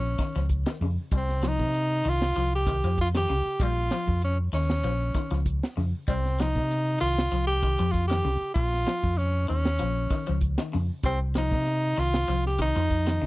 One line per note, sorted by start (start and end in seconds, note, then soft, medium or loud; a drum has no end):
0.00 0.16 A#1 medium
0.00 0.15 F3 medium
0.00 0.46 C#4 medium
0.05 closed hi-hat soft
0.19 0.33 D#3 medium
0.19 kick medium
0.19 snare soft
0.19 closed hi-hat medium
0.36 0.64 C#2 medium
0.36 0.63 F3 medium
0.36 snare soft
0.49 kick medium
0.49 closed hi-hat medium
0.66 0.79 D#3 medium
0.66 snare medium
0.80 0.96 F2 medium
0.80 1.09 C#3 medium
0.80 open hi-hat medium
1.11 1.61 C2 loud
1.11 1.39 G3 medium
1.11 kick loud
1.11 closed hi-hat medium
1.17 1.49 C4 medium
1.29 snare soft
1.42 1.70 F3 medium
1.42 snare medium
1.42 closed hi-hat medium
1.48 2.10 D#4 loud
1.59 2.01 C3 loud
1.59 kick medium
1.73 closed hi-hat medium
1.90 closed hi-hat soft
2.04 2.33 C2 medium
2.04 2.32 D#3 medium
2.04 open hi-hat medium
2.08 2.54 F4 loud
2.22 snare medium
2.35 2.80 C2 medium
2.35 2.63 F3 medium
2.35 closed hi-hat medium
2.53 2.96 G4 loud
2.53 closed hi-hat soft
2.66 2.82 D#3 medium
2.66 kick medium
2.66 snare soft
2.66 closed hi-hat medium
2.83 3.25 F2 loud
2.83 3.11 F3 medium
2.83 closed hi-hat soft
2.98 3.08 F4 loud
2.98 kick medium
2.98 closed hi-hat medium
3.14 3.27 D#3 medium
3.14 3.64 G4 loud
3.14 snare medium
3.14 closed hi-hat soft
3.28 3.45 C2 loud
3.28 3.56 C#3 medium
3.28 open hi-hat medium
3.60 3.88 A#1 loud
3.60 3.88 G3 loud
3.60 4.23 F4 loud
3.60 kick loud
3.60 closed hi-hat medium
3.91 4.18 F3 medium
3.91 snare medium
3.91 closed hi-hat medium
4.07 4.49 F2 loud
4.07 kick medium
4.22 4.38 C#4 medium
4.22 closed hi-hat medium
4.53 4.81 D#2 medium
4.53 4.80 D#3 medium
4.53 5.43 C#4 loud
4.53 open hi-hat medium
4.70 snare medium
4.84 5.12 A#1 medium
4.84 5.11 F3 medium
4.84 closed hi-hat medium
5.00 closed hi-hat soft
5.15 5.29 D#3 medium
5.15 kick medium
5.15 snare soft
5.15 closed hi-hat medium
5.31 5.60 C#2 medium
5.31 5.58 F3 medium
5.31 snare soft
5.46 kick medium
5.46 closed hi-hat medium
5.63 snare medium
5.77 5.92 F2 medium
5.77 6.04 C#3 medium
5.77 snare soft
5.77 open hi-hat medium
6.08 6.57 C2 loud
6.08 6.35 G3 loud
6.08 6.42 C4 medium
6.08 kick medium
6.08 closed hi-hat medium
6.26 snare soft
6.40 6.66 F3 medium
6.40 7.00 D#4 loud
6.40 snare medium
6.40 closed hi-hat medium
6.55 6.97 C3 loud
6.55 kick medium
6.70 snare soft
6.70 closed hi-hat medium
6.87 closed hi-hat soft
7.00 7.29 C2 medium
7.00 7.27 D#3 medium
7.00 7.45 F4 loud
7.00 open hi-hat medium
7.19 snare medium
7.31 7.75 C2 medium
7.31 7.59 F3 medium
7.31 closed hi-hat medium
7.47 7.93 G4 loud
7.47 closed hi-hat soft
7.63 7.77 D#3 medium
7.63 kick medium
7.63 closed hi-hat medium
7.79 8.21 F2 loud
7.79 8.06 F3 medium
7.79 closed hi-hat soft
7.91 8.07 F4 loud
7.91 kick medium
7.91 closed hi-hat medium
8.07 8.23 D#3 medium
8.07 8.51 G4 loud
8.07 snare medium
8.07 closed hi-hat soft
8.25 8.40 C2 loud
8.25 8.52 C#3 medium
8.25 open hi-hat medium
8.54 8.84 A#1 loud
8.54 9.19 F4 loud
8.54 muted clean electric guitar stroke medium
8.54 kick loud
8.54 closed hi-hat medium
8.74 snare soft
8.87 9.14 F3 medium
8.87 snare medium
8.87 closed hi-hat medium
9.04 9.45 F2 loud
9.04 kick medium
9.17 9.49 C#4 medium
9.17 closed hi-hat medium
9.48 9.78 D#2 medium
9.48 9.75 D#3 medium
9.48 10.38 C#4 loud
9.48 open hi-hat medium
9.65 snare medium
9.79 10.09 A#1 medium
9.79 10.06 F3 medium
9.79 closed hi-hat medium
9.96 closed hi-hat soft
10.10 10.25 D#3 medium
10.10 muted fingered electric bass stroke soft
10.10 kick medium
10.10 snare soft
10.10 closed hi-hat medium
10.27 10.57 C#2 medium
10.27 10.54 F3 medium
10.41 kick medium
10.41 closed hi-hat medium
10.58 10.71 D#3 medium
10.58 snare medium
10.72 10.89 F2 medium
10.72 11.00 C#3 medium
10.72 snare soft
10.72 open hi-hat medium
11.03 11.53 C2 loud
11.03 11.31 G3 medium
11.03 11.19 C4 loud
11.03 kick loud
11.03 snare soft
11.03 closed hi-hat medium
11.35 11.62 F3 medium
11.35 12.00 D#4 loud
11.35 snare medium
11.35 closed hi-hat medium
11.51 11.93 C3 loud
11.51 kick medium
11.51 snare soft
11.66 snare soft
11.66 closed hi-hat medium
11.83 closed hi-hat soft
11.97 12.26 C2 medium
11.97 12.24 D#3 medium
11.97 12.45 F4 loud
11.97 snare soft
11.97 open hi-hat medium
12.14 snare medium
12.28 12.72 C2 medium
12.28 12.55 F3 medium
12.28 snare soft
12.28 closed hi-hat medium
12.45 12.59 G4 medium
12.45 snare soft
12.45 closed hi-hat soft
12.59 12.73 D#3 medium
12.59 13.26 D#4 loud
12.59 kick medium
12.59 snare soft
12.59 closed hi-hat medium
12.76 13.17 F2 loud
12.76 13.03 F3 medium
12.76 snare soft
12.76 closed hi-hat soft
12.90 kick medium
12.90 closed hi-hat medium
13.07 13.19 D#3 medium
13.07 snare medium
13.07 closed hi-hat soft
13.21 13.26 C2 loud
13.21 13.26 C#3 medium
13.21 open hi-hat medium